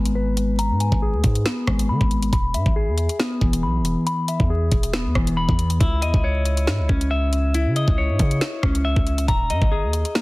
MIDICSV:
0, 0, Header, 1, 4, 480
1, 0, Start_track
1, 0, Key_signature, 5, "minor"
1, 0, Tempo, 434783
1, 648, Time_signature, 4, 2, 24, 8
1, 11278, End_track
2, 0, Start_track
2, 0, Title_t, "Clean electric guitar"
2, 0, Program_c, 0, 27
2, 0, Note_on_c, 0, 56, 76
2, 0, Note_on_c, 0, 59, 93
2, 0, Note_on_c, 0, 71, 103
2, 0, Note_on_c, 0, 80, 82
2, 0, Note_on_c, 0, 82, 90
2, 155, Note_off_c, 0, 71, 0
2, 168, Note_on_c, 0, 71, 96
2, 408, Note_off_c, 0, 80, 0
2, 635, Note_off_c, 0, 82, 0
2, 648, Note_on_c, 0, 82, 102
2, 888, Note_on_c, 0, 80, 83
2, 1128, Note_off_c, 0, 59, 0
2, 1130, Note_on_c, 0, 68, 95
2, 1369, Note_off_c, 0, 56, 0
2, 1608, Note_on_c, 0, 59, 93
2, 1609, Note_off_c, 0, 71, 0
2, 1850, Note_on_c, 0, 56, 80
2, 2083, Note_off_c, 0, 82, 0
2, 2088, Note_on_c, 0, 83, 99
2, 2328, Note_off_c, 0, 80, 0
2, 2555, Note_off_c, 0, 83, 0
2, 2568, Note_off_c, 0, 59, 0
2, 2569, Note_off_c, 0, 56, 0
2, 2569, Note_off_c, 0, 68, 0
2, 2569, Note_on_c, 0, 83, 107
2, 2807, Note_on_c, 0, 76, 79
2, 3047, Note_on_c, 0, 68, 91
2, 3530, Note_on_c, 0, 59, 107
2, 3770, Note_on_c, 0, 52, 76
2, 3994, Note_off_c, 0, 83, 0
2, 4008, Note_on_c, 0, 83, 89
2, 4248, Note_off_c, 0, 76, 0
2, 4475, Note_off_c, 0, 83, 0
2, 4488, Note_off_c, 0, 68, 0
2, 4488, Note_on_c, 0, 83, 103
2, 4729, Note_on_c, 0, 76, 85
2, 4969, Note_off_c, 0, 59, 0
2, 4969, Note_on_c, 0, 68, 85
2, 5209, Note_off_c, 0, 52, 0
2, 5448, Note_on_c, 0, 59, 92
2, 5690, Note_on_c, 0, 52, 76
2, 5915, Note_off_c, 0, 83, 0
2, 5928, Note_on_c, 0, 83, 86
2, 6169, Note_off_c, 0, 76, 0
2, 6403, Note_off_c, 0, 83, 0
2, 6408, Note_off_c, 0, 59, 0
2, 6408, Note_on_c, 0, 64, 103
2, 6409, Note_off_c, 0, 52, 0
2, 6409, Note_off_c, 0, 68, 0
2, 6650, Note_on_c, 0, 75, 83
2, 6889, Note_on_c, 0, 73, 89
2, 7609, Note_on_c, 0, 61, 75
2, 7842, Note_off_c, 0, 64, 0
2, 7847, Note_on_c, 0, 76, 94
2, 8089, Note_off_c, 0, 75, 0
2, 8327, Note_off_c, 0, 73, 0
2, 8331, Note_on_c, 0, 64, 102
2, 8565, Note_off_c, 0, 76, 0
2, 8570, Note_on_c, 0, 75, 86
2, 8809, Note_on_c, 0, 73, 95
2, 9049, Note_off_c, 0, 61, 0
2, 9530, Note_on_c, 0, 61, 79
2, 9763, Note_off_c, 0, 75, 0
2, 9767, Note_on_c, 0, 76, 96
2, 9770, Note_off_c, 0, 64, 0
2, 10244, Note_off_c, 0, 76, 0
2, 10248, Note_on_c, 0, 82, 109
2, 10249, Note_off_c, 0, 61, 0
2, 10249, Note_off_c, 0, 73, 0
2, 10492, Note_on_c, 0, 75, 93
2, 10726, Note_on_c, 0, 68, 86
2, 11211, Note_on_c, 0, 58, 91
2, 11278, Note_off_c, 0, 58, 0
2, 11278, Note_off_c, 0, 68, 0
2, 11278, Note_off_c, 0, 75, 0
2, 11278, Note_off_c, 0, 82, 0
2, 11278, End_track
3, 0, Start_track
3, 0, Title_t, "808-style bass"
3, 0, Program_c, 1, 38
3, 0, Note_on_c, 1, 32, 103
3, 775, Note_on_c, 1, 44, 101
3, 792, Note_off_c, 1, 32, 0
3, 1004, Note_off_c, 1, 44, 0
3, 1016, Note_on_c, 1, 32, 105
3, 1255, Note_on_c, 1, 39, 97
3, 1272, Note_off_c, 1, 32, 0
3, 1363, Note_off_c, 1, 39, 0
3, 1369, Note_on_c, 1, 44, 100
3, 1599, Note_off_c, 1, 44, 0
3, 1849, Note_on_c, 1, 32, 108
3, 2089, Note_on_c, 1, 51, 97
3, 2105, Note_off_c, 1, 32, 0
3, 2209, Note_off_c, 1, 51, 0
3, 2216, Note_on_c, 1, 32, 102
3, 2555, Note_off_c, 1, 32, 0
3, 2569, Note_on_c, 1, 28, 109
3, 2809, Note_on_c, 1, 44, 99
3, 2825, Note_off_c, 1, 28, 0
3, 2929, Note_off_c, 1, 44, 0
3, 2936, Note_on_c, 1, 32, 108
3, 3175, Note_on_c, 1, 40, 99
3, 3192, Note_off_c, 1, 32, 0
3, 3404, Note_off_c, 1, 40, 0
3, 3769, Note_on_c, 1, 28, 107
3, 4009, Note_on_c, 1, 35, 100
3, 4025, Note_off_c, 1, 28, 0
3, 4192, Note_on_c, 1, 28, 98
3, 4209, Note_off_c, 1, 35, 0
3, 4367, Note_off_c, 1, 28, 0
3, 4856, Note_on_c, 1, 40, 105
3, 5195, Note_off_c, 1, 40, 0
3, 5209, Note_on_c, 1, 28, 104
3, 5576, Note_on_c, 1, 40, 101
3, 5593, Note_off_c, 1, 28, 0
3, 5683, Note_off_c, 1, 40, 0
3, 5689, Note_on_c, 1, 28, 104
3, 6042, Note_off_c, 1, 28, 0
3, 6057, Note_on_c, 1, 40, 102
3, 6395, Note_off_c, 1, 40, 0
3, 6409, Note_on_c, 1, 37, 109
3, 6649, Note_on_c, 1, 40, 96
3, 6665, Note_off_c, 1, 37, 0
3, 6769, Note_off_c, 1, 40, 0
3, 6776, Note_on_c, 1, 37, 103
3, 7369, Note_on_c, 1, 44, 99
3, 7385, Note_off_c, 1, 37, 0
3, 7496, Note_on_c, 1, 37, 101
3, 7512, Note_off_c, 1, 44, 0
3, 7603, Note_off_c, 1, 37, 0
3, 7610, Note_on_c, 1, 37, 104
3, 8456, Note_on_c, 1, 49, 100
3, 8472, Note_off_c, 1, 37, 0
3, 8684, Note_off_c, 1, 49, 0
3, 8696, Note_on_c, 1, 37, 109
3, 8936, Note_on_c, 1, 44, 101
3, 8952, Note_off_c, 1, 37, 0
3, 9043, Note_off_c, 1, 44, 0
3, 9048, Note_on_c, 1, 49, 105
3, 9279, Note_off_c, 1, 49, 0
3, 9529, Note_on_c, 1, 37, 106
3, 9881, Note_off_c, 1, 37, 0
3, 9897, Note_on_c, 1, 37, 101
3, 10235, Note_off_c, 1, 37, 0
3, 10249, Note_on_c, 1, 27, 104
3, 10488, Note_on_c, 1, 43, 98
3, 10504, Note_off_c, 1, 27, 0
3, 10609, Note_off_c, 1, 43, 0
3, 10616, Note_on_c, 1, 31, 109
3, 10855, Note_on_c, 1, 39, 99
3, 10872, Note_off_c, 1, 31, 0
3, 11083, Note_off_c, 1, 39, 0
3, 11278, End_track
4, 0, Start_track
4, 0, Title_t, "Drums"
4, 60, Note_on_c, 9, 42, 73
4, 170, Note_off_c, 9, 42, 0
4, 408, Note_on_c, 9, 42, 87
4, 518, Note_off_c, 9, 42, 0
4, 648, Note_on_c, 9, 42, 79
4, 759, Note_off_c, 9, 42, 0
4, 887, Note_on_c, 9, 42, 71
4, 997, Note_off_c, 9, 42, 0
4, 1016, Note_on_c, 9, 36, 89
4, 1127, Note_off_c, 9, 36, 0
4, 1366, Note_on_c, 9, 42, 83
4, 1368, Note_on_c, 9, 36, 92
4, 1476, Note_off_c, 9, 42, 0
4, 1479, Note_off_c, 9, 36, 0
4, 1496, Note_on_c, 9, 42, 70
4, 1606, Note_off_c, 9, 42, 0
4, 1608, Note_on_c, 9, 38, 123
4, 1608, Note_on_c, 9, 42, 68
4, 1718, Note_off_c, 9, 42, 0
4, 1719, Note_off_c, 9, 38, 0
4, 1849, Note_on_c, 9, 36, 90
4, 1849, Note_on_c, 9, 37, 99
4, 1959, Note_off_c, 9, 37, 0
4, 1960, Note_off_c, 9, 36, 0
4, 1980, Note_on_c, 9, 42, 75
4, 2090, Note_off_c, 9, 42, 0
4, 2216, Note_on_c, 9, 36, 100
4, 2327, Note_off_c, 9, 36, 0
4, 2329, Note_on_c, 9, 42, 48
4, 2439, Note_off_c, 9, 42, 0
4, 2456, Note_on_c, 9, 42, 81
4, 2566, Note_off_c, 9, 42, 0
4, 2568, Note_on_c, 9, 36, 102
4, 2569, Note_on_c, 9, 42, 76
4, 2679, Note_off_c, 9, 36, 0
4, 2679, Note_off_c, 9, 42, 0
4, 2807, Note_on_c, 9, 42, 74
4, 2918, Note_off_c, 9, 42, 0
4, 2936, Note_on_c, 9, 36, 91
4, 3047, Note_off_c, 9, 36, 0
4, 3286, Note_on_c, 9, 42, 80
4, 3396, Note_off_c, 9, 42, 0
4, 3416, Note_on_c, 9, 42, 79
4, 3526, Note_off_c, 9, 42, 0
4, 3528, Note_on_c, 9, 38, 124
4, 3639, Note_off_c, 9, 38, 0
4, 3769, Note_on_c, 9, 36, 90
4, 3880, Note_off_c, 9, 36, 0
4, 3900, Note_on_c, 9, 42, 76
4, 4010, Note_off_c, 9, 42, 0
4, 4248, Note_on_c, 9, 42, 86
4, 4358, Note_off_c, 9, 42, 0
4, 4488, Note_on_c, 9, 42, 78
4, 4599, Note_off_c, 9, 42, 0
4, 4727, Note_on_c, 9, 42, 72
4, 4837, Note_off_c, 9, 42, 0
4, 4856, Note_on_c, 9, 36, 89
4, 4967, Note_off_c, 9, 36, 0
4, 5206, Note_on_c, 9, 42, 79
4, 5209, Note_on_c, 9, 36, 95
4, 5316, Note_off_c, 9, 42, 0
4, 5319, Note_off_c, 9, 36, 0
4, 5336, Note_on_c, 9, 42, 82
4, 5446, Note_off_c, 9, 42, 0
4, 5449, Note_on_c, 9, 38, 123
4, 5559, Note_off_c, 9, 38, 0
4, 5690, Note_on_c, 9, 36, 91
4, 5690, Note_on_c, 9, 37, 97
4, 5800, Note_off_c, 9, 36, 0
4, 5800, Note_off_c, 9, 37, 0
4, 5821, Note_on_c, 9, 42, 73
4, 5931, Note_off_c, 9, 42, 0
4, 6057, Note_on_c, 9, 36, 102
4, 6167, Note_off_c, 9, 36, 0
4, 6169, Note_on_c, 9, 42, 77
4, 6279, Note_off_c, 9, 42, 0
4, 6293, Note_on_c, 9, 42, 74
4, 6403, Note_off_c, 9, 42, 0
4, 6409, Note_on_c, 9, 36, 103
4, 6409, Note_on_c, 9, 42, 79
4, 6519, Note_off_c, 9, 36, 0
4, 6519, Note_off_c, 9, 42, 0
4, 6648, Note_on_c, 9, 42, 74
4, 6758, Note_off_c, 9, 42, 0
4, 6777, Note_on_c, 9, 36, 91
4, 6887, Note_off_c, 9, 36, 0
4, 7127, Note_on_c, 9, 42, 79
4, 7237, Note_off_c, 9, 42, 0
4, 7256, Note_on_c, 9, 42, 81
4, 7367, Note_off_c, 9, 42, 0
4, 7369, Note_on_c, 9, 38, 120
4, 7479, Note_off_c, 9, 38, 0
4, 7610, Note_on_c, 9, 36, 92
4, 7720, Note_off_c, 9, 36, 0
4, 7740, Note_on_c, 9, 42, 74
4, 7851, Note_off_c, 9, 42, 0
4, 8088, Note_on_c, 9, 42, 84
4, 8199, Note_off_c, 9, 42, 0
4, 8328, Note_on_c, 9, 42, 76
4, 8439, Note_off_c, 9, 42, 0
4, 8567, Note_on_c, 9, 42, 74
4, 8677, Note_off_c, 9, 42, 0
4, 8696, Note_on_c, 9, 36, 92
4, 8806, Note_off_c, 9, 36, 0
4, 9046, Note_on_c, 9, 42, 82
4, 9048, Note_on_c, 9, 36, 92
4, 9156, Note_off_c, 9, 42, 0
4, 9159, Note_off_c, 9, 36, 0
4, 9175, Note_on_c, 9, 42, 70
4, 9286, Note_off_c, 9, 42, 0
4, 9288, Note_on_c, 9, 42, 65
4, 9289, Note_on_c, 9, 38, 123
4, 9399, Note_off_c, 9, 38, 0
4, 9399, Note_off_c, 9, 42, 0
4, 9529, Note_on_c, 9, 36, 94
4, 9529, Note_on_c, 9, 37, 100
4, 9639, Note_off_c, 9, 37, 0
4, 9640, Note_off_c, 9, 36, 0
4, 9660, Note_on_c, 9, 42, 75
4, 9771, Note_off_c, 9, 42, 0
4, 9897, Note_on_c, 9, 36, 100
4, 10007, Note_off_c, 9, 36, 0
4, 10009, Note_on_c, 9, 42, 48
4, 10119, Note_off_c, 9, 42, 0
4, 10136, Note_on_c, 9, 42, 80
4, 10246, Note_off_c, 9, 42, 0
4, 10249, Note_on_c, 9, 36, 106
4, 10249, Note_on_c, 9, 42, 77
4, 10359, Note_off_c, 9, 36, 0
4, 10359, Note_off_c, 9, 42, 0
4, 10487, Note_on_c, 9, 42, 74
4, 10598, Note_off_c, 9, 42, 0
4, 10616, Note_on_c, 9, 36, 87
4, 10727, Note_off_c, 9, 36, 0
4, 10966, Note_on_c, 9, 42, 84
4, 11077, Note_off_c, 9, 42, 0
4, 11096, Note_on_c, 9, 42, 83
4, 11206, Note_off_c, 9, 42, 0
4, 11208, Note_on_c, 9, 38, 119
4, 11278, Note_off_c, 9, 38, 0
4, 11278, End_track
0, 0, End_of_file